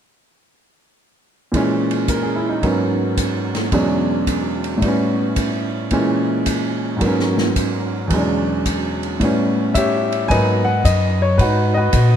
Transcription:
1.52 grand piano A#2 E3 G#3, kick, ride
1.57 grand piano C#4
1.91 ride
2.08 grand piano A#4, kick, hi-hat pedal, ride
2.23 grand piano G#4
2.36 grand piano E4
2.49 grand piano D#4
2.62 grand piano G#2 F#3 A#3 B3, kick, ride
2.66 grand piano C#4
3.17 kick, hi-hat pedal, ride
3.55 snare, ride
3.72 grand piano E2 B2 F#3 G#3 C#4 D4, kick, ride
4.27 kick, hi-hat pedal, ride
4.64 ride
4.78 grand piano A2 G3
4.82 grand piano B3, kick, ride
4.88 grand piano C#4
5.36 kick, hi-hat pedal, ride
5.91 grand piano A#2 E3 G#3 C#4, kick, ride
6.46 kick, hi-hat pedal, ride
6.96 grand piano G#2 F#3
7.01 grand piano A#3 B3, kick, ride
7.07 grand piano C#4
7.20 snare
7.38 snare
7.56 kick, hi-hat pedal, ride
8.07 grand piano E2 B2, kick, ride
8.12 grand piano F#3 G#3
8.16 grand piano C#4 D4
8.66 kick, hi-hat pedal, ride
9.03 ride
9.20 grand piano A2 G3 B3, kick, ride
9.25 grand piano C#4
9.74 grand piano G4 C#5 E5, kick, hi-hat pedal, ride
10.12 ride
10.28 upright bass G#2, grand piano F#3 A#3 B3 D#4 B4 D#5 G#5, kick, ride
10.64 grand piano F#5
10.84 upright bass F#2, grand piano D#5, kick, hi-hat pedal, ride
11.22 grand piano C#5
11.38 upright bass G#2, grand piano D#4 F#4 B4, kick, ride
11.74 grand piano F#4 B4 D#5
11.93 upright bass A#2, kick, hi-hat pedal, ride

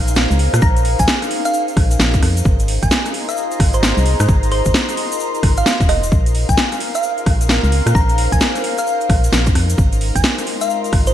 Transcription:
Already playing: fm bass A#1, ambient pad C#4 D#4 G#4 A#4 C5 D#5 F5 A#5
0.08 closed hi-hat, shaker
0.16 snare, shaker
0.31 fm bass C#2, shaker
0.39 open hi-hat
0.54 fm bass A#2, cross-stick, closed hi-hat, shaker
0.62 fm bass A#1, synth pluck A#5, kick, shaker
0.77 closed hi-hat, shaker
0.85 open hi-hat
0.99 fm bass A#1, synth pluck G#5, kick, closed hi-hat, shaker
1.08 snare, shaker
1.22 cross-stick, closed hi-hat, shaker
1.31 open hi-hat
1.45 synth pluck F5, closed hi-hat, shaker
1.54 shaker
1.68 closed hi-hat, shaker
1.77 fm bass A#1, kick, cross-stick, open hi-hat
1.91 closed hi-hat, shaker
1.99 fm bass A#1, snare, shaker
2.14 kick, closed hi-hat, shaker
2.22 fm bass F2, cross-stick, open hi-hat
2.37 closed hi-hat, shaker
2.45 fm bass G#1, ambient pad F4 G#4 A#4 C5, kick, shaker
2.57 ambient pad A#5, closed hi-hat, shaker
2.64 ambient pad D#5
2.68 open hi-hat
2.83 fm bass G#1, synth pluck G#5, kick, closed hi-hat, shaker
2.91 snare, shaker
2.96 ambient pad C6
3.06 cross-stick, closed hi-hat, shaker
3.14 open hi-hat
3.29 synth pluck F5, closed hi-hat, shaker
3.37 shaker
3.51 closed hi-hat, shaker
3.60 fm bass G#1, kick, cross-stick, open hi-hat
3.73 synth pluck C5, closed hi-hat, shaker
3.83 synth pluck C5, snare, shaker
3.97 fm bass C2, shaker
4.06 open hi-hat
4.20 fm bass G#2, cross-stick, closed hi-hat, shaker
4.28 fm bass G#1, kick, shaker
4.43 closed hi-hat, shaker
4.52 synth pluck C5, open hi-hat
4.65 fm bass G#1, kick, closed hi-hat, shaker
4.74 snare, shaker
4.89 cross-stick, closed hi-hat, shaker
4.97 open hi-hat
5.12 closed hi-hat, shaker
5.20 shaker
5.34 closed hi-hat, shaker
5.43 fm bass G#1, kick, cross-stick, open hi-hat
5.57 synth pluck F5, closed hi-hat, shaker
5.66 snare, shaker
5.80 fm bass D#1, kick, closed hi-hat, shaker
5.89 fm bass F1, synth pluck D#5, cross-stick, open hi-hat
6.03 fm bass D#1, closed hi-hat, shaker
6.12 fm bass A#1, ambient pad C#4 D#4 G#4 A#4 C5, kick, shaker
6.18 ambient pad F5
6.26 closed hi-hat, shaker
6.35 open hi-hat
6.49 fm bass A#1, synth pluck G#5, kick, closed hi-hat, shaker
6.57 snare, shaker
6.72 cross-stick, closed hi-hat, shaker
6.80 open hi-hat
6.95 synth pluck F5, closed hi-hat, shaker
7.03 shaker
7.18 closed hi-hat, shaker
7.26 fm bass A#1, kick, cross-stick, open hi-hat
7.41 closed hi-hat, shaker
7.49 snare, shaker
7.64 fm bass C#2, shaker
7.72 open hi-hat
7.86 fm bass A#2, cross-stick, closed hi-hat, shaker
7.95 fm bass A#1, ambient pad A#4, synth pluck A#5, kick, shaker
8.09 closed hi-hat, shaker
8.18 open hi-hat
8.32 fm bass A#1, synth pluck G#5, kick, closed hi-hat, shaker
8.41 snare, shaker
8.56 cross-stick, closed hi-hat, shaker
8.64 open hi-hat
8.78 synth pluck F5, closed hi-hat, shaker
8.87 shaker
9.01 closed hi-hat, shaker
9.09 fm bass A#1, kick, cross-stick, open hi-hat
9.24 closed hi-hat, shaker
9.32 fm bass A#1, snare, shaker
9.46 kick, closed hi-hat, shaker
9.55 fm bass F2, cross-stick, open hi-hat
9.70 closed hi-hat, shaker
9.78 fm bass G#1, ambient pad G#3 C4 F4, kick, shaker
9.93 ambient pad C6, closed hi-hat, shaker
10.01 open hi-hat
10.05 ambient pad D#5
10.16 fm bass G#1, synth pluck G#5, ambient pad A#5, kick, closed hi-hat, shaker
10.24 snare, shaker
10.38 cross-stick, closed hi-hat, shaker
10.47 open hi-hat
10.61 synth pluck F5, closed hi-hat, shaker
10.70 shaker
10.84 closed hi-hat, shaker
10.93 fm bass G#1, kick, cross-stick, open hi-hat
11.07 synth pluck C5, closed hi-hat, shaker

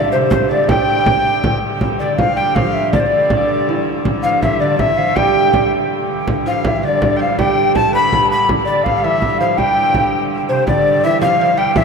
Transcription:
Already playing: hurdy-gurdy G2 D3, lute D3, recorder D5
0.12 lute C3, recorder C5
0.31 recorder C5, frame drum
0.49 lute D3, recorder D5, frame drum
0.64 lute A3
0.68 lute G3, recorder G5, frame drum
1.06 frame drum
1.44 frame drum
1.81 hurdy-gurdy G2 D3, frame drum
1.99 lute D3, recorder D5
2.17 lute F3, recorder F5, frame drum
2.35 lute G3, recorder G5, frame drum
2.55 lute F3, recorder F5, frame drum
2.74 recorder E5
2.93 lute D3, recorder D5, frame drum
3.00 recorder C5
3.06 recorder D5
3.30 frame drum
3.49 frame drum
3.69 lute E3
4.05 frame drum
4.22 lute F3, recorder F5
4.42 lute E3, recorder E5, frame drum
4.60 lute D3, recorder D5, frame drum
4.78 lute E3, recorder E5, frame drum
4.97 lute F3, recorder F5
5.16 lute G3, recorder G5, frame drum
5.36 frame drum
5.53 lute G3, frame drum
5.72 frame drum
6.27 hurdy-gurdy G2 D3, frame drum
6.46 lute F3, recorder F5
6.65 lute E3, recorder E5, frame drum
6.76 lute E3
6.83 lute D3, recorder D5, frame drum
7.02 frame drum
7.16 lute F3, recorder G5
7.21 recorder F5
7.39 lute G3, recorder G5, frame drum
7.75 lute A3, recorder A5, frame drum
7.93 lute B3, recorder B5, frame drum
8.13 frame drum
8.30 recorder B5
8.49 frame drum
8.65 lute D3, recorder D5
8.84 recorder F5, frame drum
8.96 recorder F5
9.03 lute E3, recorder E5, frame drum
9.22 frame drum
9.38 lute F3, recorder F5
9.57 lute G3, recorder G5, frame drum
9.94 frame drum
10.13 frame drum
10.49 lute C3, recorder C5
10.67 hurdy-gurdy G2 D3, lute D3, recorder D5, frame drum
11.03 lute E3, recorder E5
11.21 lute F3, recorder F5, frame drum
11.40 lute F3, frame drum
11.57 lute G3, recorder G5, frame drum
11.75 lute E3, recorder E5, frame drum

